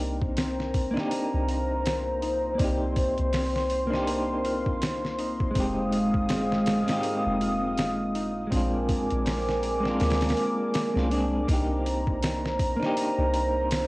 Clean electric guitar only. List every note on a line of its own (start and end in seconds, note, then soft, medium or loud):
0.00 0.88 A#3 medium
0.00 0.90 D4 medium
0.00 0.91 D#4 medium
0.00 0.93 G4 medium
0.91 2.53 A#3 medium
0.91 2.55 D4 medium
0.97 2.56 D#4 medium
0.97 2.58 G4 medium
2.55 3.85 A#3 medium
2.55 3.86 D5 medium
2.61 3.88 D#4 medium
2.61 3.89 G4 medium
3.87 5.49 A#3 medium
3.87 5.51 D4 medium
3.93 5.53 D#4 medium
3.93 5.54 G4 loud
5.51 6.81 G#3 medium
5.51 6.82 C4 medium
5.57 6.84 D#4 medium
5.57 6.85 G4 medium
6.84 8.46 G#3 medium
6.84 8.47 C4 medium
6.89 8.49 D#4 medium
6.89 8.50 G4 loud
8.47 9.77 G#3 medium
8.47 9.78 C4 medium
8.53 9.80 D4 medium
8.53 9.81 F4 medium
9.80 10.89 G#3 medium
9.80 10.91 C4 medium
9.86 10.92 D4 medium
9.86 10.94 F4 medium
10.94 11.06 G#3 medium
10.94 11.07 C4 medium
10.94 11.08 D4 medium
10.98 11.09 F4 medium
11.09 11.44 G#3 medium
11.09 11.44 C4 medium
11.09 11.45 D4 medium
11.14 11.46 G#4 medium
11.44 12.74 A#3 medium
11.44 12.75 D4 medium
11.50 12.77 D#4 medium
11.50 12.78 G4 medium
12.76 13.87 A#3 medium
12.76 13.87 D4 medium
12.82 13.87 D#4 medium
12.82 13.87 G4 loud